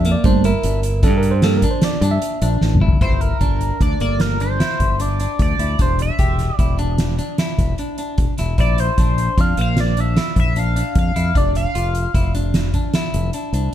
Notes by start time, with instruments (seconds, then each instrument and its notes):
Already playing: fingered electric bass F2, tine electric piano E5
0.05 clean electric guitar A#3, closed hi-hat
0.12 tine electric piano D5
0.24 fingered electric bass G1, tine electric piano G3 A3 A#3 C5, clean electric guitar D4, kick, closed hi-hat
0.44 clean electric guitar E4, tine electric piano A#4, closed hi-hat
0.63 fingered electric bass G1, closed hi-hat
0.83 closed hi-hat
1.03 fingered electric bass G2, clean electric guitar D4, tine electric piano A4, kick, closed hi-hat
1.18 tine electric piano A#4
1.23 closed hi-hat
1.31 tine electric piano C5
1.42 clean electric guitar A#3, tine electric piano A4, snare, closed hi-hat
1.57 tine electric piano A#4
1.62 clean electric guitar D4, kick, closed hi-hat
1.71 tine electric piano C5
1.82 tine electric piano D5, snare, closed hi-hat
2.01 fingered electric bass G2, clean electric guitar D4, closed hi-hat
2.11 tine electric piano E5
2.22 closed hi-hat
2.42 fingered electric bass A#1, clean electric guitar D4, closed hi-hat
2.61 fingered electric bass A1, snare
2.75 mid tom
2.81 fingered electric bass G1, clean electric guitar E4
2.88 floor tom
3.01 fingered electric bass G1, clean electric guitar E4, analog synth lead C5, kick, closed hi-hat
3.15 analog synth lead C5
3.21 analog synth lead A#4, closed hi-hat
3.41 fingered electric bass G1, clean electric guitar D4, kick, closed hi-hat
3.61 closed hi-hat
3.80 fingered electric bass D2, clean electric guitar D4, analog synth lead D5, kick, closed hi-hat
4.00 fingered electric bass G1, clean electric guitar A#3, analog synth lead D5, closed hi-hat
4.20 analog synth lead A#4, snare, closed hi-hat
4.40 clean electric guitar D4, analog synth lead C5, closed hi-hat
4.60 clean electric guitar E4, snare, closed hi-hat
4.80 fingered electric bass G1, kick, closed hi-hat
5.00 clean electric guitar D4, analog synth lead D5, closed hi-hat
5.20 clean electric guitar D4, closed hi-hat
5.39 fingered electric bass D2, analog synth lead D5, kick, closed hi-hat
5.59 fingered electric bass D2, clean electric guitar E4, closed hi-hat
5.79 fingered electric bass E1, clean electric guitar D4, analog synth lead C5, kick, closed hi-hat
5.99 analog synth lead E5, closed hi-hat
6.19 fingered electric bass E1, clean electric guitar G4, kick, closed hi-hat
6.39 snare, closed hi-hat
6.56 fingered electric bass E1, clean electric guitar E4, analog synth lead D5, kick, closed hi-hat
6.79 clean electric guitar D4, closed hi-hat
6.98 snare, closed hi-hat
7.19 clean electric guitar D4, closed hi-hat
7.38 clean electric guitar E4, snare, closed hi-hat
7.58 fingered electric bass E1, kick, snare, closed hi-hat
7.78 clean electric guitar D4, closed hi-hat
7.98 clean electric guitar D4, closed hi-hat
8.18 fingered electric bass E1, kick, closed hi-hat
8.38 fingered electric bass E1, clean electric guitar E4, snare, closed hi-hat
8.58 fingered electric bass A#1, clean electric guitar E4, analog synth lead D5, kick, closed hi-hat
8.78 analog synth lead C5, closed hi-hat
8.98 fingered electric bass A#1, clean electric guitar D4, kick, closed hi-hat
9.18 closed hi-hat
9.37 fingered electric bass F2, clean electric guitar D4, analog synth lead F5, kick, closed hi-hat
9.57 fingered electric bass A#1, clean electric guitar A#3, analog synth lead F5, closed hi-hat
9.77 analog synth lead D5, snare, closed hi-hat
9.97 clean electric guitar D4, analog synth lead E5, closed hi-hat
10.17 clean electric guitar E4, snare, closed hi-hat
10.36 fingered electric bass A#1, analog synth lead E5, kick, closed hi-hat
10.56 clean electric guitar D4, analog synth lead F5, closed hi-hat
10.76 clean electric guitar D4, closed hi-hat
10.95 fingered electric bass F2, analog synth lead F5, kick, closed hi-hat
11.16 fingered electric bass F2, clean electric guitar E4, closed hi-hat
11.35 fingered electric bass F1, clean electric guitar D4, analog synth lead D5, kick, closed hi-hat
11.55 analog synth lead F5, closed hi-hat
11.75 fingered electric bass F1, clean electric guitar F4, closed hi-hat
11.95 closed hi-hat
12.14 fingered electric bass F1, clean electric guitar E4, kick, closed hi-hat
12.35 clean electric guitar D4, closed hi-hat
12.54 snare, closed hi-hat
12.74 clean electric guitar D4, kick, closed hi-hat
12.94 clean electric guitar E4, snare, closed hi-hat
13.14 fingered electric bass F1, closed hi-hat
13.33 clean electric guitar D4, closed hi-hat
13.53 fingered electric bass C2, clean electric guitar D4, closed hi-hat